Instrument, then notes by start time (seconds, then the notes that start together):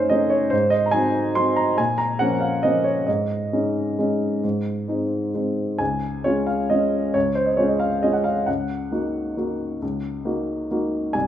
grand piano
Already playing: F#2 A3 C#4 D#4 C5 C#5
0.09 A3 C#4 D#4 D#5
0.30 C#5
0.50 G#2 C5
0.70 D#5
0.86 A#5
0.91 F#3 C4 D#4 G#5
1.35 F#3 C4 D#4 C6
1.56 A#5
1.78 A#2 G#5
1.98 A#5
2.19 F3 A#3 C#4 F#5
2.40 F5
2.63 F3 A#3 C#4 D#5
2.84 C#5
3.07 G#2 D#5
3.53 G#3 C#4 D#4
3.99 G#3 C#4 D#4
4.44 G#2
4.88 G#3 C4 D#4
5.34 G#3 C4 D#4
5.79 C#2 G#5
6.24 G#3 C#4 F4 C#5
6.47 F5
6.70 G#3 C#4 F4 D#5
7.14 C#2 C#5
7.35 C5
7.46 D#5
7.57 G#3 C#4 F4 C#5
7.68 D#5
7.79 F5
8.03 G#3 C#4 F4 D#5
8.13 F#5
8.24 F5
8.46 C#2 F#5
8.92 A#3 D#4 F#4
9.37 A#3 D#4 F#4
9.82 C#2
10.25 A#3 D#4 F#4
10.71 A#3 D#4 F#4
11.13 C2 G#5